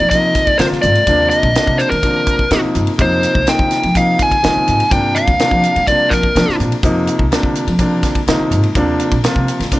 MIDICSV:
0, 0, Header, 1, 6, 480
1, 0, Start_track
1, 0, Tempo, 480000
1, 1076, Time_signature, 4, 2, 24, 8
1, 9795, End_track
2, 0, Start_track
2, 0, Title_t, "Lead electric guitar"
2, 0, Program_c, 0, 29
2, 98, Note_on_c, 0, 75, 90
2, 478, Note_off_c, 0, 75, 0
2, 478, Note_on_c, 0, 74, 90
2, 579, Note_on_c, 0, 72, 79
2, 602, Note_off_c, 0, 74, 0
2, 646, Note_off_c, 0, 72, 0
2, 816, Note_on_c, 0, 74, 79
2, 1272, Note_off_c, 0, 74, 0
2, 1296, Note_on_c, 0, 75, 82
2, 1782, Note_on_c, 0, 72, 73
2, 1801, Note_off_c, 0, 75, 0
2, 1900, Note_off_c, 0, 72, 0
2, 1904, Note_on_c, 0, 70, 64
2, 2590, Note_off_c, 0, 70, 0
2, 3016, Note_on_c, 0, 72, 83
2, 3491, Note_on_c, 0, 79, 84
2, 3500, Note_off_c, 0, 72, 0
2, 3970, Note_on_c, 0, 77, 89
2, 3978, Note_off_c, 0, 79, 0
2, 4210, Note_off_c, 0, 77, 0
2, 4224, Note_on_c, 0, 80, 92
2, 4918, Note_off_c, 0, 80, 0
2, 4922, Note_on_c, 0, 79, 88
2, 5149, Note_on_c, 0, 77, 82
2, 5166, Note_off_c, 0, 79, 0
2, 5874, Note_off_c, 0, 77, 0
2, 5878, Note_on_c, 0, 74, 74
2, 6099, Note_on_c, 0, 70, 64
2, 6125, Note_off_c, 0, 74, 0
2, 6554, Note_off_c, 0, 70, 0
2, 9795, End_track
3, 0, Start_track
3, 0, Title_t, "Grand piano"
3, 0, Program_c, 1, 0
3, 118, Note_on_c, 1, 48, 55
3, 129, Note_on_c, 1, 53, 49
3, 132, Note_on_c, 1, 58, 51
3, 138, Note_on_c, 1, 63, 63
3, 496, Note_off_c, 1, 48, 0
3, 501, Note_off_c, 1, 53, 0
3, 503, Note_off_c, 1, 58, 0
3, 506, Note_off_c, 1, 63, 0
3, 590, Note_on_c, 1, 48, 61
3, 595, Note_on_c, 1, 53, 61
3, 603, Note_on_c, 1, 58, 60
3, 610, Note_on_c, 1, 65, 76
3, 971, Note_off_c, 1, 48, 0
3, 974, Note_off_c, 1, 53, 0
3, 978, Note_off_c, 1, 58, 0
3, 982, Note_off_c, 1, 65, 0
3, 1069, Note_on_c, 1, 48, 70
3, 1069, Note_on_c, 1, 53, 65
3, 1083, Note_on_c, 1, 58, 66
3, 1085, Note_on_c, 1, 62, 84
3, 1451, Note_off_c, 1, 48, 0
3, 1451, Note_off_c, 1, 53, 0
3, 1458, Note_off_c, 1, 58, 0
3, 1459, Note_off_c, 1, 62, 0
3, 1558, Note_on_c, 1, 48, 61
3, 1565, Note_on_c, 1, 53, 54
3, 1571, Note_on_c, 1, 58, 54
3, 1578, Note_on_c, 1, 62, 69
3, 1935, Note_off_c, 1, 48, 0
3, 1939, Note_off_c, 1, 53, 0
3, 1942, Note_off_c, 1, 58, 0
3, 1945, Note_off_c, 1, 62, 0
3, 2023, Note_on_c, 1, 48, 54
3, 2031, Note_on_c, 1, 53, 51
3, 2037, Note_on_c, 1, 58, 54
3, 2041, Note_on_c, 1, 62, 60
3, 2408, Note_off_c, 1, 48, 0
3, 2412, Note_off_c, 1, 53, 0
3, 2415, Note_off_c, 1, 58, 0
3, 2417, Note_off_c, 1, 62, 0
3, 2506, Note_on_c, 1, 48, 77
3, 2509, Note_on_c, 1, 53, 74
3, 2517, Note_on_c, 1, 58, 73
3, 2522, Note_on_c, 1, 63, 88
3, 2889, Note_off_c, 1, 48, 0
3, 2891, Note_off_c, 1, 53, 0
3, 2895, Note_off_c, 1, 58, 0
3, 2898, Note_off_c, 1, 63, 0
3, 2979, Note_on_c, 1, 48, 73
3, 2984, Note_on_c, 1, 53, 64
3, 2994, Note_on_c, 1, 58, 63
3, 2996, Note_on_c, 1, 63, 75
3, 3366, Note_off_c, 1, 48, 0
3, 3369, Note_off_c, 1, 53, 0
3, 3374, Note_off_c, 1, 58, 0
3, 3375, Note_off_c, 1, 63, 0
3, 3463, Note_on_c, 1, 48, 59
3, 3469, Note_on_c, 1, 53, 57
3, 3476, Note_on_c, 1, 58, 54
3, 3484, Note_on_c, 1, 63, 65
3, 3848, Note_off_c, 1, 48, 0
3, 3851, Note_off_c, 1, 53, 0
3, 3854, Note_off_c, 1, 58, 0
3, 3858, Note_off_c, 1, 63, 0
3, 3945, Note_on_c, 1, 48, 53
3, 3956, Note_on_c, 1, 53, 52
3, 3961, Note_on_c, 1, 58, 52
3, 3963, Note_on_c, 1, 63, 62
3, 4329, Note_off_c, 1, 48, 0
3, 4334, Note_off_c, 1, 53, 0
3, 4337, Note_off_c, 1, 58, 0
3, 4338, Note_off_c, 1, 63, 0
3, 4425, Note_on_c, 1, 48, 69
3, 4428, Note_on_c, 1, 53, 65
3, 4434, Note_on_c, 1, 58, 58
3, 4440, Note_on_c, 1, 63, 80
3, 4809, Note_off_c, 1, 48, 0
3, 4810, Note_off_c, 1, 53, 0
3, 4814, Note_off_c, 1, 58, 0
3, 4817, Note_off_c, 1, 63, 0
3, 4901, Note_on_c, 1, 48, 72
3, 4905, Note_on_c, 1, 53, 61
3, 4916, Note_on_c, 1, 58, 64
3, 4920, Note_on_c, 1, 62, 79
3, 5287, Note_off_c, 1, 48, 0
3, 5289, Note_off_c, 1, 53, 0
3, 5295, Note_off_c, 1, 58, 0
3, 5297, Note_off_c, 1, 62, 0
3, 5391, Note_on_c, 1, 48, 64
3, 5399, Note_on_c, 1, 53, 56
3, 5402, Note_on_c, 1, 58, 55
3, 5412, Note_on_c, 1, 62, 67
3, 5773, Note_off_c, 1, 48, 0
3, 5776, Note_off_c, 1, 53, 0
3, 5778, Note_off_c, 1, 58, 0
3, 5783, Note_off_c, 1, 62, 0
3, 5883, Note_on_c, 1, 48, 53
3, 5883, Note_on_c, 1, 53, 51
3, 5892, Note_on_c, 1, 58, 49
3, 5899, Note_on_c, 1, 62, 61
3, 6258, Note_off_c, 1, 48, 0
3, 6258, Note_off_c, 1, 53, 0
3, 6263, Note_off_c, 1, 58, 0
3, 6267, Note_off_c, 1, 62, 0
3, 6351, Note_on_c, 1, 48, 65
3, 6360, Note_on_c, 1, 53, 64
3, 6365, Note_on_c, 1, 58, 65
3, 6370, Note_on_c, 1, 62, 76
3, 6732, Note_off_c, 1, 48, 0
3, 6737, Note_off_c, 1, 53, 0
3, 6740, Note_off_c, 1, 58, 0
3, 6742, Note_off_c, 1, 62, 0
3, 6831, Note_on_c, 1, 48, 91
3, 6834, Note_on_c, 1, 53, 73
3, 6842, Note_on_c, 1, 58, 79
3, 6844, Note_on_c, 1, 63, 93
3, 7213, Note_off_c, 1, 48, 0
3, 7214, Note_off_c, 1, 53, 0
3, 7218, Note_off_c, 1, 58, 0
3, 7220, Note_off_c, 1, 63, 0
3, 7312, Note_on_c, 1, 48, 74
3, 7320, Note_on_c, 1, 53, 61
3, 7327, Note_on_c, 1, 58, 64
3, 7331, Note_on_c, 1, 62, 79
3, 7693, Note_off_c, 1, 48, 0
3, 7697, Note_off_c, 1, 53, 0
3, 7701, Note_off_c, 1, 58, 0
3, 7703, Note_off_c, 1, 62, 0
3, 7786, Note_on_c, 1, 48, 68
3, 7796, Note_on_c, 1, 53, 60
3, 7801, Note_on_c, 1, 58, 61
3, 7803, Note_on_c, 1, 62, 78
3, 8171, Note_off_c, 1, 48, 0
3, 8175, Note_off_c, 1, 53, 0
3, 8178, Note_off_c, 1, 58, 0
3, 8179, Note_off_c, 1, 62, 0
3, 8275, Note_on_c, 1, 48, 80
3, 8278, Note_on_c, 1, 53, 75
3, 8284, Note_on_c, 1, 58, 72
3, 8288, Note_on_c, 1, 63, 91
3, 8655, Note_off_c, 1, 48, 0
3, 8656, Note_off_c, 1, 53, 0
3, 8660, Note_off_c, 1, 58, 0
3, 8662, Note_off_c, 1, 63, 0
3, 8756, Note_on_c, 1, 48, 90
3, 8759, Note_on_c, 1, 53, 81
3, 8761, Note_on_c, 1, 58, 77
3, 8769, Note_on_c, 1, 62, 101
3, 9135, Note_off_c, 1, 48, 0
3, 9137, Note_off_c, 1, 53, 0
3, 9138, Note_off_c, 1, 58, 0
3, 9142, Note_off_c, 1, 62, 0
3, 9234, Note_on_c, 1, 48, 79
3, 9236, Note_on_c, 1, 53, 70
3, 9247, Note_on_c, 1, 58, 66
3, 9252, Note_on_c, 1, 65, 82
3, 9614, Note_off_c, 1, 48, 0
3, 9615, Note_off_c, 1, 53, 0
3, 9621, Note_off_c, 1, 58, 0
3, 9623, Note_off_c, 1, 65, 0
3, 9712, Note_on_c, 1, 48, 65
3, 9720, Note_on_c, 1, 53, 59
3, 9721, Note_on_c, 1, 58, 62
3, 9727, Note_on_c, 1, 62, 78
3, 9795, Note_off_c, 1, 48, 0
3, 9795, Note_off_c, 1, 53, 0
3, 9795, Note_off_c, 1, 58, 0
3, 9795, Note_off_c, 1, 62, 0
3, 9795, End_track
4, 0, Start_track
4, 0, Title_t, "Upright bass"
4, 0, Program_c, 2, 32
4, 0, Note_on_c, 2, 53, 72
4, 349, Note_off_c, 2, 53, 0
4, 349, Note_on_c, 2, 50, 73
4, 466, Note_off_c, 2, 50, 0
4, 592, Note_on_c, 2, 50, 82
4, 708, Note_off_c, 2, 50, 0
4, 837, Note_on_c, 2, 44, 90
4, 950, Note_off_c, 2, 44, 0
4, 1067, Note_on_c, 2, 39, 82
4, 1296, Note_off_c, 2, 39, 0
4, 1431, Note_on_c, 2, 34, 80
4, 1545, Note_off_c, 2, 34, 0
4, 1671, Note_on_c, 2, 48, 70
4, 1785, Note_off_c, 2, 48, 0
4, 1917, Note_on_c, 2, 51, 72
4, 2271, Note_off_c, 2, 51, 0
4, 2271, Note_on_c, 2, 48, 77
4, 2387, Note_off_c, 2, 48, 0
4, 2511, Note_on_c, 2, 48, 81
4, 2627, Note_off_c, 2, 48, 0
4, 2753, Note_on_c, 2, 43, 87
4, 2868, Note_off_c, 2, 43, 0
4, 2990, Note_on_c, 2, 41, 79
4, 3218, Note_off_c, 2, 41, 0
4, 3351, Note_on_c, 2, 36, 76
4, 3465, Note_off_c, 2, 36, 0
4, 3592, Note_on_c, 2, 50, 73
4, 3706, Note_off_c, 2, 50, 0
4, 3838, Note_on_c, 2, 53, 73
4, 4194, Note_off_c, 2, 53, 0
4, 4194, Note_on_c, 2, 50, 71
4, 4308, Note_off_c, 2, 50, 0
4, 4448, Note_on_c, 2, 50, 85
4, 4556, Note_off_c, 2, 50, 0
4, 4681, Note_on_c, 2, 44, 86
4, 4792, Note_off_c, 2, 44, 0
4, 4914, Note_on_c, 2, 43, 81
4, 5140, Note_off_c, 2, 43, 0
4, 5276, Note_on_c, 2, 38, 81
4, 5388, Note_off_c, 2, 38, 0
4, 5512, Note_on_c, 2, 53, 72
4, 5626, Note_off_c, 2, 53, 0
4, 5760, Note_on_c, 2, 55, 72
4, 6114, Note_off_c, 2, 55, 0
4, 6114, Note_on_c, 2, 53, 75
4, 6229, Note_off_c, 2, 53, 0
4, 6355, Note_on_c, 2, 53, 87
4, 6470, Note_off_c, 2, 53, 0
4, 6599, Note_on_c, 2, 46, 85
4, 6712, Note_off_c, 2, 46, 0
4, 6831, Note_on_c, 2, 41, 82
4, 7059, Note_off_c, 2, 41, 0
4, 7195, Note_on_c, 2, 36, 78
4, 7308, Note_off_c, 2, 36, 0
4, 7433, Note_on_c, 2, 50, 65
4, 7547, Note_off_c, 2, 50, 0
4, 7674, Note_on_c, 2, 53, 70
4, 8031, Note_off_c, 2, 53, 0
4, 8031, Note_on_c, 2, 50, 77
4, 8148, Note_off_c, 2, 50, 0
4, 8272, Note_on_c, 2, 50, 83
4, 8388, Note_off_c, 2, 50, 0
4, 8510, Note_on_c, 2, 44, 87
4, 8628, Note_off_c, 2, 44, 0
4, 8753, Note_on_c, 2, 39, 79
4, 8980, Note_off_c, 2, 39, 0
4, 9114, Note_on_c, 2, 34, 75
4, 9228, Note_off_c, 2, 34, 0
4, 9356, Note_on_c, 2, 48, 77
4, 9469, Note_off_c, 2, 48, 0
4, 9598, Note_on_c, 2, 51, 73
4, 9795, Note_off_c, 2, 51, 0
4, 9795, End_track
5, 0, Start_track
5, 0, Title_t, "Muted upright bass strokes"
5, 714, Note_on_c, 9, 29, 35
5, 814, Note_off_c, 9, 29, 0
5, 2638, Note_on_c, 9, 29, 33
5, 2738, Note_off_c, 9, 29, 0
5, 4562, Note_on_c, 9, 29, 35
5, 4662, Note_off_c, 9, 29, 0
5, 6486, Note_on_c, 9, 29, 33
5, 6586, Note_off_c, 9, 29, 0
5, 8396, Note_on_c, 9, 29, 36
5, 8496, Note_off_c, 9, 29, 0
5, 9795, End_track
6, 0, Start_track
6, 0, Title_t, "Drums"
6, 0, Note_on_c, 9, 51, 51
6, 97, Note_off_c, 9, 51, 0
6, 111, Note_on_c, 9, 44, 71
6, 111, Note_on_c, 9, 51, 79
6, 112, Note_on_c, 9, 36, 66
6, 211, Note_off_c, 9, 44, 0
6, 211, Note_off_c, 9, 51, 0
6, 212, Note_off_c, 9, 36, 0
6, 348, Note_on_c, 9, 44, 79
6, 348, Note_on_c, 9, 51, 57
6, 351, Note_on_c, 9, 36, 71
6, 448, Note_off_c, 9, 44, 0
6, 448, Note_off_c, 9, 51, 0
6, 451, Note_off_c, 9, 36, 0
6, 468, Note_on_c, 9, 51, 55
6, 471, Note_on_c, 9, 36, 68
6, 568, Note_off_c, 9, 51, 0
6, 571, Note_off_c, 9, 36, 0
6, 588, Note_on_c, 9, 44, 65
6, 588, Note_on_c, 9, 51, 70
6, 599, Note_on_c, 9, 38, 96
6, 688, Note_off_c, 9, 44, 0
6, 688, Note_off_c, 9, 51, 0
6, 699, Note_off_c, 9, 38, 0
6, 723, Note_on_c, 9, 38, 29
6, 823, Note_off_c, 9, 38, 0
6, 826, Note_on_c, 9, 44, 72
6, 826, Note_on_c, 9, 51, 55
6, 926, Note_off_c, 9, 44, 0
6, 926, Note_off_c, 9, 51, 0
6, 952, Note_on_c, 9, 51, 53
6, 1052, Note_off_c, 9, 51, 0
6, 1068, Note_on_c, 9, 44, 72
6, 1068, Note_on_c, 9, 51, 72
6, 1070, Note_on_c, 9, 36, 89
6, 1168, Note_off_c, 9, 44, 0
6, 1168, Note_off_c, 9, 51, 0
6, 1170, Note_off_c, 9, 36, 0
6, 1310, Note_on_c, 9, 44, 71
6, 1310, Note_on_c, 9, 51, 52
6, 1410, Note_off_c, 9, 44, 0
6, 1410, Note_off_c, 9, 51, 0
6, 1430, Note_on_c, 9, 51, 50
6, 1432, Note_on_c, 9, 36, 69
6, 1530, Note_off_c, 9, 51, 0
6, 1532, Note_off_c, 9, 36, 0
6, 1552, Note_on_c, 9, 44, 69
6, 1552, Note_on_c, 9, 51, 68
6, 1564, Note_on_c, 9, 38, 92
6, 1652, Note_off_c, 9, 44, 0
6, 1652, Note_off_c, 9, 51, 0
6, 1664, Note_off_c, 9, 38, 0
6, 1674, Note_on_c, 9, 36, 70
6, 1774, Note_off_c, 9, 36, 0
6, 1791, Note_on_c, 9, 44, 71
6, 1791, Note_on_c, 9, 51, 52
6, 1891, Note_off_c, 9, 44, 0
6, 1891, Note_off_c, 9, 51, 0
6, 1916, Note_on_c, 9, 51, 53
6, 2016, Note_off_c, 9, 51, 0
6, 2030, Note_on_c, 9, 36, 67
6, 2030, Note_on_c, 9, 44, 72
6, 2030, Note_on_c, 9, 51, 68
6, 2130, Note_off_c, 9, 36, 0
6, 2130, Note_off_c, 9, 44, 0
6, 2130, Note_off_c, 9, 51, 0
6, 2266, Note_on_c, 9, 44, 75
6, 2266, Note_on_c, 9, 51, 56
6, 2269, Note_on_c, 9, 36, 67
6, 2366, Note_off_c, 9, 44, 0
6, 2366, Note_off_c, 9, 51, 0
6, 2369, Note_off_c, 9, 36, 0
6, 2391, Note_on_c, 9, 36, 64
6, 2491, Note_off_c, 9, 36, 0
6, 2506, Note_on_c, 9, 44, 70
6, 2506, Note_on_c, 9, 51, 71
6, 2517, Note_on_c, 9, 38, 90
6, 2606, Note_off_c, 9, 44, 0
6, 2606, Note_off_c, 9, 51, 0
6, 2617, Note_off_c, 9, 38, 0
6, 2748, Note_on_c, 9, 44, 72
6, 2748, Note_on_c, 9, 51, 51
6, 2848, Note_off_c, 9, 44, 0
6, 2848, Note_off_c, 9, 51, 0
6, 2869, Note_on_c, 9, 51, 52
6, 2969, Note_off_c, 9, 51, 0
6, 2988, Note_on_c, 9, 44, 73
6, 2988, Note_on_c, 9, 51, 67
6, 2990, Note_on_c, 9, 36, 96
6, 3088, Note_off_c, 9, 44, 0
6, 3088, Note_off_c, 9, 51, 0
6, 3090, Note_off_c, 9, 36, 0
6, 3230, Note_on_c, 9, 44, 72
6, 3230, Note_on_c, 9, 51, 50
6, 3330, Note_off_c, 9, 44, 0
6, 3330, Note_off_c, 9, 51, 0
6, 3351, Note_on_c, 9, 36, 69
6, 3451, Note_off_c, 9, 36, 0
6, 3468, Note_on_c, 9, 44, 72
6, 3468, Note_on_c, 9, 51, 67
6, 3479, Note_on_c, 9, 38, 88
6, 3568, Note_off_c, 9, 44, 0
6, 3568, Note_off_c, 9, 51, 0
6, 3579, Note_off_c, 9, 38, 0
6, 3592, Note_on_c, 9, 36, 67
6, 3692, Note_off_c, 9, 36, 0
6, 3706, Note_on_c, 9, 44, 76
6, 3706, Note_on_c, 9, 51, 54
6, 3717, Note_on_c, 9, 38, 26
6, 3806, Note_off_c, 9, 44, 0
6, 3806, Note_off_c, 9, 51, 0
6, 3817, Note_off_c, 9, 38, 0
6, 3832, Note_on_c, 9, 51, 52
6, 3932, Note_off_c, 9, 51, 0
6, 3953, Note_on_c, 9, 36, 68
6, 3956, Note_on_c, 9, 44, 73
6, 3956, Note_on_c, 9, 51, 72
6, 4053, Note_off_c, 9, 36, 0
6, 4056, Note_off_c, 9, 44, 0
6, 4056, Note_off_c, 9, 51, 0
6, 4193, Note_on_c, 9, 36, 72
6, 4195, Note_on_c, 9, 44, 78
6, 4195, Note_on_c, 9, 51, 60
6, 4293, Note_off_c, 9, 36, 0
6, 4295, Note_off_c, 9, 44, 0
6, 4295, Note_off_c, 9, 51, 0
6, 4314, Note_on_c, 9, 36, 62
6, 4317, Note_on_c, 9, 51, 57
6, 4414, Note_off_c, 9, 36, 0
6, 4417, Note_off_c, 9, 51, 0
6, 4436, Note_on_c, 9, 44, 70
6, 4436, Note_on_c, 9, 51, 72
6, 4447, Note_on_c, 9, 38, 91
6, 4536, Note_off_c, 9, 44, 0
6, 4536, Note_off_c, 9, 51, 0
6, 4547, Note_off_c, 9, 38, 0
6, 4675, Note_on_c, 9, 44, 72
6, 4675, Note_on_c, 9, 51, 57
6, 4775, Note_off_c, 9, 44, 0
6, 4775, Note_off_c, 9, 51, 0
6, 4798, Note_on_c, 9, 51, 56
6, 4898, Note_off_c, 9, 51, 0
6, 4914, Note_on_c, 9, 36, 97
6, 4914, Note_on_c, 9, 44, 71
6, 4914, Note_on_c, 9, 51, 70
6, 5014, Note_off_c, 9, 36, 0
6, 5014, Note_off_c, 9, 44, 0
6, 5014, Note_off_c, 9, 51, 0
6, 5155, Note_on_c, 9, 44, 72
6, 5155, Note_on_c, 9, 51, 53
6, 5255, Note_off_c, 9, 44, 0
6, 5255, Note_off_c, 9, 51, 0
6, 5276, Note_on_c, 9, 36, 75
6, 5279, Note_on_c, 9, 51, 52
6, 5376, Note_off_c, 9, 36, 0
6, 5379, Note_off_c, 9, 51, 0
6, 5394, Note_on_c, 9, 44, 70
6, 5394, Note_on_c, 9, 51, 75
6, 5405, Note_on_c, 9, 38, 94
6, 5494, Note_off_c, 9, 44, 0
6, 5494, Note_off_c, 9, 51, 0
6, 5505, Note_off_c, 9, 38, 0
6, 5513, Note_on_c, 9, 36, 68
6, 5613, Note_off_c, 9, 36, 0
6, 5635, Note_on_c, 9, 44, 72
6, 5635, Note_on_c, 9, 51, 53
6, 5735, Note_off_c, 9, 44, 0
6, 5735, Note_off_c, 9, 51, 0
6, 5759, Note_on_c, 9, 51, 53
6, 5859, Note_off_c, 9, 51, 0
6, 5874, Note_on_c, 9, 36, 62
6, 5877, Note_on_c, 9, 44, 70
6, 5877, Note_on_c, 9, 51, 73
6, 5974, Note_off_c, 9, 36, 0
6, 5977, Note_off_c, 9, 44, 0
6, 5977, Note_off_c, 9, 51, 0
6, 6112, Note_on_c, 9, 36, 71
6, 6116, Note_on_c, 9, 44, 77
6, 6116, Note_on_c, 9, 51, 52
6, 6126, Note_on_c, 9, 38, 27
6, 6212, Note_off_c, 9, 36, 0
6, 6216, Note_off_c, 9, 44, 0
6, 6216, Note_off_c, 9, 51, 0
6, 6226, Note_off_c, 9, 38, 0
6, 6234, Note_on_c, 9, 36, 68
6, 6334, Note_off_c, 9, 36, 0
6, 6360, Note_on_c, 9, 44, 73
6, 6360, Note_on_c, 9, 51, 67
6, 6371, Note_on_c, 9, 38, 87
6, 6460, Note_off_c, 9, 44, 0
6, 6460, Note_off_c, 9, 51, 0
6, 6471, Note_off_c, 9, 38, 0
6, 6495, Note_on_c, 9, 38, 28
6, 6595, Note_off_c, 9, 38, 0
6, 6600, Note_on_c, 9, 44, 67
6, 6600, Note_on_c, 9, 51, 51
6, 6700, Note_off_c, 9, 44, 0
6, 6700, Note_off_c, 9, 51, 0
6, 6719, Note_on_c, 9, 51, 53
6, 6819, Note_off_c, 9, 51, 0
6, 6832, Note_on_c, 9, 36, 96
6, 6838, Note_on_c, 9, 44, 69
6, 6838, Note_on_c, 9, 51, 64
6, 6932, Note_off_c, 9, 36, 0
6, 6938, Note_off_c, 9, 44, 0
6, 6938, Note_off_c, 9, 51, 0
6, 7072, Note_on_c, 9, 44, 71
6, 7072, Note_on_c, 9, 51, 48
6, 7172, Note_off_c, 9, 44, 0
6, 7172, Note_off_c, 9, 51, 0
6, 7193, Note_on_c, 9, 36, 71
6, 7293, Note_off_c, 9, 36, 0
6, 7317, Note_on_c, 9, 44, 68
6, 7317, Note_on_c, 9, 51, 65
6, 7328, Note_on_c, 9, 38, 94
6, 7417, Note_off_c, 9, 44, 0
6, 7417, Note_off_c, 9, 51, 0
6, 7428, Note_off_c, 9, 38, 0
6, 7433, Note_on_c, 9, 36, 70
6, 7533, Note_off_c, 9, 36, 0
6, 7554, Note_on_c, 9, 44, 77
6, 7554, Note_on_c, 9, 51, 55
6, 7654, Note_off_c, 9, 44, 0
6, 7654, Note_off_c, 9, 51, 0
6, 7675, Note_on_c, 9, 51, 53
6, 7775, Note_off_c, 9, 51, 0
6, 7788, Note_on_c, 9, 44, 76
6, 7788, Note_on_c, 9, 51, 68
6, 7789, Note_on_c, 9, 36, 64
6, 7888, Note_off_c, 9, 44, 0
6, 7888, Note_off_c, 9, 51, 0
6, 7889, Note_off_c, 9, 36, 0
6, 8031, Note_on_c, 9, 36, 71
6, 8032, Note_on_c, 9, 44, 80
6, 8032, Note_on_c, 9, 51, 57
6, 8043, Note_on_c, 9, 38, 29
6, 8131, Note_off_c, 9, 36, 0
6, 8132, Note_off_c, 9, 44, 0
6, 8132, Note_off_c, 9, 51, 0
6, 8143, Note_off_c, 9, 38, 0
6, 8153, Note_on_c, 9, 36, 68
6, 8154, Note_on_c, 9, 51, 53
6, 8253, Note_off_c, 9, 36, 0
6, 8254, Note_off_c, 9, 51, 0
6, 8275, Note_on_c, 9, 44, 66
6, 8275, Note_on_c, 9, 51, 70
6, 8286, Note_on_c, 9, 38, 99
6, 8375, Note_off_c, 9, 44, 0
6, 8375, Note_off_c, 9, 51, 0
6, 8386, Note_off_c, 9, 38, 0
6, 8514, Note_on_c, 9, 44, 68
6, 8514, Note_on_c, 9, 51, 57
6, 8614, Note_off_c, 9, 44, 0
6, 8614, Note_off_c, 9, 51, 0
6, 8634, Note_on_c, 9, 51, 53
6, 8734, Note_off_c, 9, 51, 0
6, 8752, Note_on_c, 9, 44, 71
6, 8752, Note_on_c, 9, 51, 72
6, 8753, Note_on_c, 9, 36, 89
6, 8852, Note_off_c, 9, 44, 0
6, 8852, Note_off_c, 9, 51, 0
6, 8853, Note_off_c, 9, 36, 0
6, 8995, Note_on_c, 9, 44, 74
6, 8995, Note_on_c, 9, 51, 52
6, 9095, Note_off_c, 9, 44, 0
6, 9095, Note_off_c, 9, 51, 0
6, 9116, Note_on_c, 9, 36, 72
6, 9119, Note_on_c, 9, 51, 56
6, 9216, Note_off_c, 9, 36, 0
6, 9219, Note_off_c, 9, 51, 0
6, 9237, Note_on_c, 9, 44, 74
6, 9237, Note_on_c, 9, 51, 71
6, 9248, Note_on_c, 9, 38, 92
6, 9337, Note_off_c, 9, 44, 0
6, 9337, Note_off_c, 9, 51, 0
6, 9348, Note_off_c, 9, 38, 0
6, 9358, Note_on_c, 9, 36, 68
6, 9458, Note_off_c, 9, 36, 0
6, 9481, Note_on_c, 9, 44, 80
6, 9481, Note_on_c, 9, 51, 59
6, 9581, Note_off_c, 9, 44, 0
6, 9581, Note_off_c, 9, 51, 0
6, 9603, Note_on_c, 9, 51, 58
6, 9614, Note_on_c, 9, 38, 28
6, 9703, Note_off_c, 9, 51, 0
6, 9714, Note_off_c, 9, 38, 0
6, 9718, Note_on_c, 9, 36, 68
6, 9718, Note_on_c, 9, 44, 77
6, 9718, Note_on_c, 9, 51, 73
6, 9795, Note_off_c, 9, 36, 0
6, 9795, Note_off_c, 9, 44, 0
6, 9795, Note_off_c, 9, 51, 0
6, 9795, End_track
0, 0, End_of_file